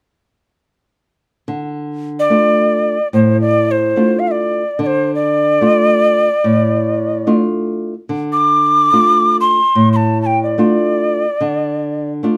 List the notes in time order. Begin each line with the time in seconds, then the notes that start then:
1.48 D3
2.19 D5
2.30 A3 D4 F4
3.13 A2 C5
3.41 D5
3.71 C5
3.96 A3 D4 F4
4.19 F5
4.28 D5 E5
4.79 D3 D5
4.87 C5
5.15 D5
5.61 A3 D4 F4
6.44 A2
7.27 A3 D4 F4
8.09 D3
8.32 D6
8.93 A3 D4 F4
9.41 C6
9.75 A2
9.93 A5 C6
10.22 A5
10.26 G5
10.43 D5
10.58 A3 D4 F4
11.41 D3
12.23 A3 D4 F4